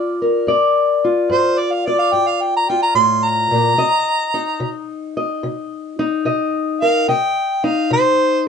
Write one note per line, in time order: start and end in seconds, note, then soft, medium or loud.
0.00 0.43 G2 medium
0.00 0.45 F4 medium
0.00 0.21 A#4 medium
0.00 0.46 D5 medium
0.22 2.98 A#4 soft
0.47 1.25 G2 medium
0.47 1.86 D5 medium
1.04 2.68 F4 soft
1.30 2.08 G2 medium
1.30 1.60 C5 medium
1.59 1.73 D5 medium
1.72 1.87 F5 medium
1.86 1.98 D5 medium
1.86 3.76 D5 medium
1.99 2.15 F5 medium
2.13 2.90 G2 medium
2.13 2.29 G5 medium
2.28 2.43 F5 medium
2.42 2.56 G5 medium
2.56 2.71 A#5 medium
2.69 3.75 F4 medium
2.69 2.82 G5 medium
2.83 2.93 A#5 medium
2.95 3.51 A2 medium
2.95 3.26 C6 loud
3.25 4.85 A#5 loud
3.51 3.77 A#2 medium
3.77 4.55 C3 medium
3.77 5.17 D#5 medium
4.34 5.98 D#4 medium
4.60 5.38 C3 medium
5.17 6.25 D#5 medium
5.43 6.21 C3 medium
5.99 7.05 D#4 medium
6.25 7.03 C3 medium
6.25 7.06 D#5 medium
6.82 7.11 A#4 medium
6.82 7.08 F5 loud
7.08 7.86 C3 medium
7.08 8.48 D#5 medium
7.08 7.66 G5 medium
7.64 8.48 D#4 medium
7.64 7.91 F5 medium
7.91 8.48 C3 medium
7.91 8.47 C5 loud